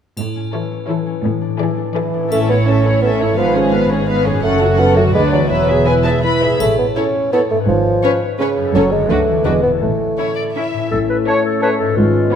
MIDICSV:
0, 0, Header, 1, 13, 480
1, 0, Start_track
1, 0, Key_signature, 3, "major"
1, 0, Tempo, 354820
1, 238, Time_signature, 3, 2, 24, 8
1, 6475, Tempo, 364520
1, 8875, Tempo, 357356
1, 16592, End_track
2, 0, Start_track
2, 0, Title_t, "Flute"
2, 0, Program_c, 0, 73
2, 15141, Note_on_c, 0, 81, 42
2, 15225, Note_off_c, 0, 81, 0
2, 15606, Note_on_c, 0, 81, 43
2, 15691, Note_off_c, 0, 81, 0
2, 16592, End_track
3, 0, Start_track
3, 0, Title_t, "Oboe"
3, 0, Program_c, 1, 68
3, 15136, Note_on_c, 1, 73, 43
3, 15307, Note_off_c, 1, 73, 0
3, 15604, Note_on_c, 1, 73, 41
3, 15775, Note_off_c, 1, 73, 0
3, 16592, End_track
4, 0, Start_track
4, 0, Title_t, "Violin section"
4, 0, Program_c, 2, 48
4, 731, Note_on_c, 2, 73, 39
4, 1083, Note_off_c, 2, 73, 0
4, 1214, Note_on_c, 2, 73, 47
4, 1562, Note_off_c, 2, 73, 0
4, 2166, Note_on_c, 2, 74, 51
4, 2524, Note_off_c, 2, 74, 0
4, 2647, Note_on_c, 2, 74, 43
4, 3016, Note_off_c, 2, 74, 0
4, 3136, Note_on_c, 2, 76, 39
4, 3362, Note_off_c, 2, 76, 0
4, 3372, Note_on_c, 2, 73, 35
4, 3615, Note_off_c, 2, 73, 0
4, 3624, Note_on_c, 2, 76, 39
4, 3844, Note_on_c, 2, 73, 36
4, 3860, Note_off_c, 2, 76, 0
4, 4090, Note_off_c, 2, 73, 0
4, 4095, Note_on_c, 2, 76, 39
4, 4319, Note_off_c, 2, 76, 0
4, 4328, Note_on_c, 2, 73, 40
4, 4568, Note_on_c, 2, 77, 38
4, 4573, Note_off_c, 2, 73, 0
4, 4794, Note_off_c, 2, 77, 0
4, 4813, Note_on_c, 2, 73, 38
4, 5051, Note_off_c, 2, 73, 0
4, 5051, Note_on_c, 2, 77, 41
4, 5289, Note_off_c, 2, 77, 0
4, 5292, Note_on_c, 2, 73, 41
4, 5526, Note_on_c, 2, 77, 42
4, 5528, Note_off_c, 2, 73, 0
4, 5746, Note_off_c, 2, 77, 0
4, 5749, Note_on_c, 2, 73, 45
4, 5992, Note_off_c, 2, 73, 0
4, 5996, Note_on_c, 2, 78, 48
4, 6218, Note_off_c, 2, 78, 0
4, 6225, Note_on_c, 2, 73, 42
4, 6461, Note_on_c, 2, 78, 48
4, 6469, Note_off_c, 2, 73, 0
4, 6690, Note_on_c, 2, 73, 45
4, 6703, Note_off_c, 2, 78, 0
4, 6926, Note_on_c, 2, 74, 41
4, 6937, Note_off_c, 2, 73, 0
4, 7159, Note_off_c, 2, 74, 0
4, 7174, Note_on_c, 2, 71, 41
4, 7408, Note_on_c, 2, 76, 44
4, 7422, Note_off_c, 2, 71, 0
4, 7636, Note_on_c, 2, 71, 39
4, 7641, Note_off_c, 2, 76, 0
4, 7882, Note_on_c, 2, 80, 49
4, 7894, Note_off_c, 2, 71, 0
4, 7985, Note_off_c, 2, 80, 0
4, 8131, Note_on_c, 2, 81, 46
4, 8233, Note_off_c, 2, 81, 0
4, 8380, Note_on_c, 2, 83, 47
4, 8857, Note_off_c, 2, 83, 0
4, 9353, Note_on_c, 2, 73, 39
4, 9461, Note_off_c, 2, 73, 0
4, 9841, Note_on_c, 2, 73, 41
4, 9949, Note_off_c, 2, 73, 0
4, 10789, Note_on_c, 2, 73, 49
4, 10897, Note_off_c, 2, 73, 0
4, 11292, Note_on_c, 2, 73, 47
4, 11399, Note_off_c, 2, 73, 0
4, 11757, Note_on_c, 2, 73, 45
4, 11864, Note_off_c, 2, 73, 0
4, 12220, Note_on_c, 2, 71, 43
4, 12327, Note_off_c, 2, 71, 0
4, 12691, Note_on_c, 2, 71, 38
4, 12798, Note_off_c, 2, 71, 0
4, 13664, Note_on_c, 2, 73, 43
4, 13897, Note_off_c, 2, 73, 0
4, 13908, Note_on_c, 2, 74, 38
4, 14008, Note_off_c, 2, 74, 0
4, 14165, Note_on_c, 2, 76, 36
4, 14644, Note_off_c, 2, 76, 0
4, 15121, Note_on_c, 2, 73, 52
4, 15480, Note_off_c, 2, 73, 0
4, 15610, Note_on_c, 2, 73, 51
4, 15961, Note_off_c, 2, 73, 0
4, 16592, End_track
5, 0, Start_track
5, 0, Title_t, "Clarinet"
5, 0, Program_c, 3, 71
5, 14174, Note_on_c, 3, 64, 49
5, 14624, Note_off_c, 3, 64, 0
5, 14657, Note_on_c, 3, 69, 67
5, 14765, Note_off_c, 3, 69, 0
5, 14902, Note_on_c, 3, 71, 65
5, 15008, Note_off_c, 3, 71, 0
5, 15129, Note_on_c, 3, 73, 72
5, 15364, Note_off_c, 3, 73, 0
5, 15383, Note_on_c, 3, 69, 63
5, 15610, Note_off_c, 3, 69, 0
5, 15619, Note_on_c, 3, 71, 68
5, 15723, Note_off_c, 3, 71, 0
5, 15840, Note_on_c, 3, 69, 62
5, 16064, Note_off_c, 3, 69, 0
5, 16072, Note_on_c, 3, 65, 66
5, 16592, Note_off_c, 3, 65, 0
5, 16592, End_track
6, 0, Start_track
6, 0, Title_t, "Violin section"
6, 0, Program_c, 4, 48
6, 724, Note_on_c, 4, 69, 38
6, 1079, Note_off_c, 4, 69, 0
6, 1216, Note_on_c, 4, 69, 52
6, 1563, Note_off_c, 4, 69, 0
6, 2174, Note_on_c, 4, 68, 49
6, 2529, Note_off_c, 4, 68, 0
6, 2646, Note_on_c, 4, 68, 44
6, 3015, Note_off_c, 4, 68, 0
6, 3140, Note_on_c, 4, 69, 38
6, 3365, Note_off_c, 4, 69, 0
6, 3385, Note_on_c, 4, 73, 38
6, 3622, Note_off_c, 4, 73, 0
6, 3639, Note_on_c, 4, 69, 35
6, 3861, Note_on_c, 4, 73, 39
6, 3867, Note_off_c, 4, 69, 0
6, 4098, Note_off_c, 4, 73, 0
6, 4106, Note_on_c, 4, 69, 37
6, 4325, Note_off_c, 4, 69, 0
6, 4344, Note_on_c, 4, 73, 37
6, 4577, Note_on_c, 4, 71, 41
6, 4581, Note_off_c, 4, 73, 0
6, 4799, Note_off_c, 4, 71, 0
6, 4814, Note_on_c, 4, 68, 40
6, 5052, Note_off_c, 4, 68, 0
6, 5062, Note_on_c, 4, 71, 39
6, 5295, Note_off_c, 4, 71, 0
6, 5300, Note_on_c, 4, 68, 43
6, 5532, Note_off_c, 4, 68, 0
6, 5537, Note_on_c, 4, 71, 41
6, 5752, Note_off_c, 4, 71, 0
6, 5774, Note_on_c, 4, 68, 42
6, 6004, Note_off_c, 4, 68, 0
6, 6013, Note_on_c, 4, 69, 48
6, 6227, Note_off_c, 4, 69, 0
6, 6238, Note_on_c, 4, 66, 43
6, 6475, Note_on_c, 4, 69, 46
6, 6476, Note_off_c, 4, 66, 0
6, 6710, Note_off_c, 4, 69, 0
6, 6720, Note_on_c, 4, 66, 44
6, 6942, Note_on_c, 4, 71, 46
6, 6953, Note_off_c, 4, 66, 0
6, 7168, Note_off_c, 4, 71, 0
6, 7178, Note_on_c, 4, 74, 41
6, 7408, Note_on_c, 4, 71, 38
6, 7424, Note_off_c, 4, 74, 0
6, 7641, Note_off_c, 4, 71, 0
6, 7657, Note_on_c, 4, 76, 35
6, 7905, Note_off_c, 4, 76, 0
6, 7905, Note_on_c, 4, 71, 40
6, 8151, Note_off_c, 4, 71, 0
6, 8151, Note_on_c, 4, 76, 36
6, 8390, Note_on_c, 4, 71, 37
6, 8395, Note_off_c, 4, 76, 0
6, 8617, Note_off_c, 4, 71, 0
6, 8639, Note_on_c, 4, 76, 36
6, 8876, Note_off_c, 4, 76, 0
6, 9369, Note_on_c, 4, 69, 38
6, 9476, Note_off_c, 4, 69, 0
6, 9848, Note_on_c, 4, 69, 45
6, 9956, Note_off_c, 4, 69, 0
6, 10793, Note_on_c, 4, 71, 48
6, 10900, Note_off_c, 4, 71, 0
6, 11279, Note_on_c, 4, 71, 49
6, 11386, Note_off_c, 4, 71, 0
6, 11752, Note_on_c, 4, 69, 44
6, 11860, Note_off_c, 4, 69, 0
6, 12226, Note_on_c, 4, 66, 43
6, 12334, Note_off_c, 4, 66, 0
6, 12690, Note_on_c, 4, 66, 39
6, 12797, Note_off_c, 4, 66, 0
6, 13678, Note_on_c, 4, 64, 34
6, 13785, Note_off_c, 4, 64, 0
6, 14178, Note_on_c, 4, 64, 34
6, 14285, Note_off_c, 4, 64, 0
6, 15153, Note_on_c, 4, 73, 50
6, 15498, Note_off_c, 4, 73, 0
6, 15623, Note_on_c, 4, 73, 50
6, 15968, Note_off_c, 4, 73, 0
6, 16592, End_track
7, 0, Start_track
7, 0, Title_t, "Viola section"
7, 0, Program_c, 5, 48
7, 721, Note_on_c, 5, 64, 38
7, 1078, Note_off_c, 5, 64, 0
7, 1199, Note_on_c, 5, 64, 45
7, 1554, Note_off_c, 5, 64, 0
7, 2156, Note_on_c, 5, 64, 50
7, 2519, Note_off_c, 5, 64, 0
7, 2655, Note_on_c, 5, 64, 45
7, 3021, Note_off_c, 5, 64, 0
7, 3133, Note_on_c, 5, 61, 40
7, 3361, Note_off_c, 5, 61, 0
7, 3376, Note_on_c, 5, 64, 38
7, 3614, Note_on_c, 5, 61, 38
7, 3617, Note_off_c, 5, 64, 0
7, 3850, Note_on_c, 5, 64, 38
7, 3855, Note_off_c, 5, 61, 0
7, 4092, Note_off_c, 5, 64, 0
7, 4092, Note_on_c, 5, 61, 39
7, 4318, Note_off_c, 5, 61, 0
7, 4332, Note_on_c, 5, 64, 36
7, 4572, Note_on_c, 5, 59, 46
7, 4575, Note_off_c, 5, 64, 0
7, 4796, Note_off_c, 5, 59, 0
7, 4810, Note_on_c, 5, 61, 41
7, 5047, Note_on_c, 5, 59, 43
7, 5050, Note_off_c, 5, 61, 0
7, 5277, Note_on_c, 5, 61, 46
7, 5287, Note_off_c, 5, 59, 0
7, 5514, Note_on_c, 5, 59, 47
7, 5521, Note_off_c, 5, 61, 0
7, 5740, Note_off_c, 5, 59, 0
7, 5747, Note_on_c, 5, 61, 44
7, 5983, Note_off_c, 5, 61, 0
7, 6000, Note_on_c, 5, 61, 53
7, 6220, Note_off_c, 5, 61, 0
7, 6236, Note_on_c, 5, 66, 45
7, 6475, Note_off_c, 5, 66, 0
7, 6482, Note_on_c, 5, 61, 45
7, 6713, Note_off_c, 5, 61, 0
7, 6718, Note_on_c, 5, 66, 47
7, 6951, Note_off_c, 5, 66, 0
7, 6952, Note_on_c, 5, 62, 45
7, 7173, Note_off_c, 5, 62, 0
7, 7184, Note_on_c, 5, 66, 40
7, 7426, Note_off_c, 5, 66, 0
7, 7436, Note_on_c, 5, 64, 44
7, 7656, Note_off_c, 5, 64, 0
7, 7674, Note_on_c, 5, 68, 38
7, 7906, Note_on_c, 5, 64, 40
7, 7913, Note_off_c, 5, 68, 0
7, 8148, Note_on_c, 5, 68, 37
7, 8152, Note_off_c, 5, 64, 0
7, 8393, Note_on_c, 5, 64, 38
7, 8394, Note_off_c, 5, 68, 0
7, 8619, Note_off_c, 5, 64, 0
7, 8635, Note_on_c, 5, 68, 34
7, 8874, Note_off_c, 5, 68, 0
7, 9343, Note_on_c, 5, 64, 40
7, 9451, Note_off_c, 5, 64, 0
7, 9835, Note_on_c, 5, 64, 42
7, 9942, Note_off_c, 5, 64, 0
7, 10793, Note_on_c, 5, 61, 46
7, 10900, Note_off_c, 5, 61, 0
7, 11277, Note_on_c, 5, 61, 51
7, 11385, Note_off_c, 5, 61, 0
7, 11749, Note_on_c, 5, 61, 49
7, 11856, Note_off_c, 5, 61, 0
7, 12214, Note_on_c, 5, 62, 45
7, 12321, Note_off_c, 5, 62, 0
7, 12694, Note_on_c, 5, 62, 42
7, 12802, Note_off_c, 5, 62, 0
7, 13670, Note_on_c, 5, 61, 35
7, 13778, Note_off_c, 5, 61, 0
7, 14165, Note_on_c, 5, 61, 31
7, 14273, Note_off_c, 5, 61, 0
7, 15141, Note_on_c, 5, 61, 50
7, 15491, Note_off_c, 5, 61, 0
7, 15618, Note_on_c, 5, 61, 49
7, 15966, Note_off_c, 5, 61, 0
7, 16592, End_track
8, 0, Start_track
8, 0, Title_t, "Harp"
8, 0, Program_c, 6, 46
8, 240, Note_on_c, 6, 45, 38
8, 483, Note_on_c, 6, 61, 29
8, 723, Note_on_c, 6, 52, 32
8, 951, Note_off_c, 6, 61, 0
8, 967, Note_on_c, 6, 61, 35
8, 1189, Note_off_c, 6, 52, 0
8, 1205, Note_on_c, 6, 52, 40
8, 1422, Note_off_c, 6, 61, 0
8, 1438, Note_on_c, 6, 61, 46
8, 1657, Note_off_c, 6, 45, 0
8, 1673, Note_on_c, 6, 45, 53
8, 1695, Note_off_c, 6, 61, 0
8, 1698, Note_off_c, 6, 52, 0
8, 1911, Note_on_c, 6, 62, 41
8, 2148, Note_on_c, 6, 52, 41
8, 2373, Note_off_c, 6, 62, 0
8, 2389, Note_on_c, 6, 62, 40
8, 2617, Note_off_c, 6, 52, 0
8, 2633, Note_on_c, 6, 52, 34
8, 2871, Note_off_c, 6, 62, 0
8, 2878, Note_off_c, 6, 45, 0
8, 2887, Note_on_c, 6, 62, 35
8, 2894, Note_on_c, 6, 45, 39
8, 2957, Note_on_c, 6, 61, 31
8, 3016, Note_on_c, 6, 64, 32
8, 3077, Note_on_c, 6, 69, 30
8, 3154, Note_off_c, 6, 52, 0
8, 3156, Note_off_c, 6, 62, 0
8, 4333, Note_on_c, 6, 44, 38
8, 4383, Note_off_c, 6, 61, 0
8, 4399, Note_on_c, 6, 61, 32
8, 4459, Note_on_c, 6, 65, 33
8, 4473, Note_off_c, 6, 45, 0
8, 4516, Note_on_c, 6, 71, 33
8, 4534, Note_off_c, 6, 64, 0
8, 4565, Note_off_c, 6, 69, 0
8, 5754, Note_on_c, 6, 42, 45
8, 5805, Note_off_c, 6, 61, 0
8, 5821, Note_on_c, 6, 61, 38
8, 5878, Note_on_c, 6, 66, 39
8, 5895, Note_off_c, 6, 44, 0
8, 5941, Note_on_c, 6, 69, 38
8, 5959, Note_off_c, 6, 65, 0
8, 5987, Note_off_c, 6, 71, 0
8, 6714, Note_on_c, 6, 50, 45
8, 6770, Note_on_c, 6, 59, 37
8, 6813, Note_off_c, 6, 66, 0
8, 6828, Note_on_c, 6, 66, 41
8, 6847, Note_off_c, 6, 42, 0
8, 6880, Note_off_c, 6, 61, 0
8, 6890, Note_on_c, 6, 71, 38
8, 6938, Note_off_c, 6, 69, 0
8, 7194, Note_on_c, 6, 52, 41
8, 7235, Note_off_c, 6, 59, 0
8, 7251, Note_on_c, 6, 59, 34
8, 7310, Note_on_c, 6, 68, 34
8, 7331, Note_off_c, 6, 50, 0
8, 7357, Note_off_c, 6, 71, 0
8, 7373, Note_on_c, 6, 71, 35
8, 7388, Note_off_c, 6, 66, 0
8, 8642, Note_on_c, 6, 45, 36
8, 8705, Note_on_c, 6, 57, 32
8, 8762, Note_on_c, 6, 69, 31
8, 8777, Note_off_c, 6, 52, 0
8, 8805, Note_off_c, 6, 59, 0
8, 8819, Note_on_c, 6, 73, 34
8, 8835, Note_off_c, 6, 68, 0
8, 8866, Note_off_c, 6, 71, 0
8, 10077, Note_on_c, 6, 44, 46
8, 10137, Note_on_c, 6, 61, 36
8, 10199, Note_on_c, 6, 71, 39
8, 10216, Note_off_c, 6, 45, 0
8, 10242, Note_off_c, 6, 73, 0
8, 10248, Note_off_c, 6, 57, 0
8, 10259, Note_on_c, 6, 73, 36
8, 10277, Note_off_c, 6, 69, 0
8, 11508, Note_on_c, 6, 42, 47
8, 11553, Note_off_c, 6, 61, 0
8, 11569, Note_on_c, 6, 61, 40
8, 11631, Note_on_c, 6, 69, 41
8, 11649, Note_off_c, 6, 44, 0
8, 11677, Note_off_c, 6, 73, 0
8, 11694, Note_on_c, 6, 73, 39
8, 11710, Note_off_c, 6, 71, 0
8, 11984, Note_on_c, 6, 50, 43
8, 12044, Note_on_c, 6, 62, 37
8, 12104, Note_on_c, 6, 66, 41
8, 12119, Note_off_c, 6, 42, 0
8, 12149, Note_off_c, 6, 61, 0
8, 12166, Note_on_c, 6, 71, 37
8, 12180, Note_off_c, 6, 69, 0
8, 12211, Note_off_c, 6, 73, 0
8, 12461, Note_on_c, 6, 52, 41
8, 12501, Note_off_c, 6, 62, 0
8, 12518, Note_on_c, 6, 62, 37
8, 12562, Note_off_c, 6, 66, 0
8, 12578, Note_on_c, 6, 66, 35
8, 12596, Note_off_c, 6, 50, 0
8, 12623, Note_off_c, 6, 71, 0
8, 12639, Note_on_c, 6, 71, 35
8, 12945, Note_on_c, 6, 45, 35
8, 13002, Note_on_c, 6, 61, 28
8, 13062, Note_on_c, 6, 64, 28
8, 13084, Note_off_c, 6, 52, 0
8, 13112, Note_off_c, 6, 62, 0
8, 13123, Note_on_c, 6, 69, 30
8, 13143, Note_off_c, 6, 66, 0
8, 13173, Note_off_c, 6, 71, 0
8, 14406, Note_off_c, 6, 45, 0
8, 14422, Note_on_c, 6, 45, 41
8, 14464, Note_off_c, 6, 61, 0
8, 14480, Note_on_c, 6, 61, 33
8, 14526, Note_off_c, 6, 64, 0
8, 14542, Note_on_c, 6, 64, 35
8, 14589, Note_off_c, 6, 69, 0
8, 14605, Note_on_c, 6, 69, 33
8, 15842, Note_on_c, 6, 44, 46
8, 15887, Note_off_c, 6, 61, 0
8, 15904, Note_on_c, 6, 61, 37
8, 15965, Note_on_c, 6, 65, 39
8, 15984, Note_off_c, 6, 45, 0
8, 16028, Note_on_c, 6, 71, 38
8, 16044, Note_off_c, 6, 64, 0
8, 16076, Note_off_c, 6, 69, 0
8, 16592, Note_off_c, 6, 44, 0
8, 16592, Note_off_c, 6, 61, 0
8, 16592, Note_off_c, 6, 65, 0
8, 16592, Note_off_c, 6, 71, 0
8, 16592, End_track
9, 0, Start_track
9, 0, Title_t, "Bassoon"
9, 0, Program_c, 7, 70
9, 2634, Note_on_c, 7, 52, 56
9, 3100, Note_off_c, 7, 52, 0
9, 3135, Note_on_c, 7, 57, 64
9, 3245, Note_off_c, 7, 57, 0
9, 3373, Note_on_c, 7, 59, 56
9, 3482, Note_off_c, 7, 59, 0
9, 3605, Note_on_c, 7, 61, 62
9, 4079, Note_off_c, 7, 61, 0
9, 4085, Note_on_c, 7, 59, 64
9, 4196, Note_off_c, 7, 59, 0
9, 4328, Note_on_c, 7, 57, 60
9, 4558, Note_off_c, 7, 57, 0
9, 4566, Note_on_c, 7, 53, 56
9, 5270, Note_off_c, 7, 53, 0
9, 5999, Note_on_c, 7, 57, 76
9, 6483, Note_on_c, 7, 59, 76
9, 6503, Note_off_c, 7, 57, 0
9, 6700, Note_off_c, 7, 59, 0
9, 6708, Note_on_c, 7, 57, 70
9, 6815, Note_off_c, 7, 57, 0
9, 6949, Note_on_c, 7, 56, 70
9, 7057, Note_off_c, 7, 56, 0
9, 7183, Note_on_c, 7, 54, 61
9, 7292, Note_off_c, 7, 54, 0
9, 7414, Note_on_c, 7, 54, 65
9, 7906, Note_on_c, 7, 52, 53
9, 7926, Note_off_c, 7, 54, 0
9, 8377, Note_off_c, 7, 52, 0
9, 8385, Note_on_c, 7, 52, 55
9, 8859, Note_off_c, 7, 52, 0
9, 8870, Note_on_c, 7, 57, 67
9, 9098, Note_off_c, 7, 57, 0
9, 9106, Note_on_c, 7, 59, 58
9, 9216, Note_off_c, 7, 59, 0
9, 9357, Note_on_c, 7, 61, 59
9, 9825, Note_off_c, 7, 61, 0
9, 9841, Note_on_c, 7, 59, 77
9, 9947, Note_off_c, 7, 59, 0
9, 10082, Note_on_c, 7, 57, 62
9, 10189, Note_off_c, 7, 57, 0
9, 10309, Note_on_c, 7, 53, 65
9, 11019, Note_off_c, 7, 53, 0
9, 11270, Note_on_c, 7, 49, 72
9, 11745, Note_on_c, 7, 54, 79
9, 11766, Note_off_c, 7, 49, 0
9, 11970, Note_on_c, 7, 56, 73
9, 11990, Note_off_c, 7, 54, 0
9, 12208, Note_on_c, 7, 57, 71
9, 12228, Note_off_c, 7, 56, 0
9, 12689, Note_on_c, 7, 56, 69
9, 12710, Note_off_c, 7, 57, 0
9, 12926, Note_off_c, 7, 56, 0
9, 12934, Note_on_c, 7, 59, 60
9, 13045, Note_off_c, 7, 59, 0
9, 13186, Note_on_c, 7, 57, 56
9, 14146, Note_off_c, 7, 57, 0
9, 15147, Note_on_c, 7, 57, 38
9, 15315, Note_off_c, 7, 57, 0
9, 15616, Note_on_c, 7, 57, 48
9, 15784, Note_off_c, 7, 57, 0
9, 16592, End_track
10, 0, Start_track
10, 0, Title_t, "French horn section"
10, 0, Program_c, 8, 60
10, 14646, Note_on_c, 8, 61, 51
10, 14658, Note_on_c, 8, 57, 50
10, 16030, Note_off_c, 8, 57, 0
10, 16093, Note_on_c, 8, 56, 54
10, 16592, Note_off_c, 8, 56, 0
10, 16592, Note_off_c, 8, 61, 0
10, 16592, End_track
11, 0, Start_track
11, 0, Title_t, "Cello section"
11, 0, Program_c, 10, 48
11, 242, Note_on_c, 10, 45, 49
11, 623, Note_off_c, 10, 45, 0
11, 1674, Note_on_c, 10, 45, 66
11, 2053, Note_off_c, 10, 45, 0
11, 3140, Note_on_c, 10, 45, 49
11, 4523, Note_off_c, 10, 45, 0
11, 4573, Note_on_c, 10, 44, 54
11, 5968, Note_off_c, 10, 44, 0
11, 6000, Note_on_c, 10, 42, 57
11, 6929, Note_off_c, 10, 42, 0
11, 6943, Note_on_c, 10, 38, 54
11, 7426, Note_off_c, 10, 38, 0
11, 7426, Note_on_c, 10, 40, 55
11, 8637, Note_off_c, 10, 40, 0
11, 8877, Note_on_c, 10, 45, 53
11, 9255, Note_off_c, 10, 45, 0
11, 10311, Note_on_c, 10, 44, 64
11, 10694, Note_off_c, 10, 44, 0
11, 11752, Note_on_c, 10, 42, 73
11, 12123, Note_off_c, 10, 42, 0
11, 12228, Note_on_c, 10, 38, 59
11, 12600, Note_off_c, 10, 38, 0
11, 12700, Note_on_c, 10, 40, 55
11, 13081, Note_off_c, 10, 40, 0
11, 13176, Note_on_c, 10, 45, 49
11, 13568, Note_off_c, 10, 45, 0
11, 14664, Note_on_c, 10, 45, 63
11, 15038, Note_off_c, 10, 45, 0
11, 16094, Note_on_c, 10, 44, 65
11, 16462, Note_off_c, 10, 44, 0
11, 16592, End_track
12, 0, Start_track
12, 0, Title_t, "Double bass section"
12, 0, Program_c, 11, 48
12, 3147, Note_on_c, 11, 33, 45
12, 4527, Note_off_c, 11, 33, 0
12, 4582, Note_on_c, 11, 32, 46
12, 5973, Note_off_c, 11, 32, 0
12, 5995, Note_on_c, 11, 30, 54
12, 6926, Note_off_c, 11, 30, 0
12, 6946, Note_on_c, 11, 38, 51
12, 7419, Note_on_c, 11, 28, 46
12, 7428, Note_off_c, 11, 38, 0
12, 8633, Note_off_c, 11, 28, 0
12, 8875, Note_on_c, 11, 33, 52
12, 9253, Note_off_c, 11, 33, 0
12, 10325, Note_on_c, 11, 32, 58
12, 10701, Note_off_c, 11, 32, 0
12, 11751, Note_on_c, 11, 30, 64
12, 12122, Note_off_c, 11, 30, 0
12, 12213, Note_on_c, 11, 38, 61
12, 12592, Note_off_c, 11, 38, 0
12, 12688, Note_on_c, 11, 28, 53
12, 13075, Note_off_c, 11, 28, 0
12, 13184, Note_on_c, 11, 33, 46
12, 13572, Note_off_c, 11, 33, 0
12, 14664, Note_on_c, 11, 33, 54
12, 15038, Note_off_c, 11, 33, 0
12, 16090, Note_on_c, 11, 32, 62
12, 16460, Note_off_c, 11, 32, 0
12, 16592, End_track
13, 0, Start_track
13, 0, Title_t, "Drums"
13, 233, Note_on_c, 9, 81, 28
13, 368, Note_off_c, 9, 81, 0
13, 3136, Note_on_c, 9, 81, 30
13, 3271, Note_off_c, 9, 81, 0
13, 8867, Note_on_c, 9, 81, 35
13, 9001, Note_off_c, 9, 81, 0
13, 16592, End_track
0, 0, End_of_file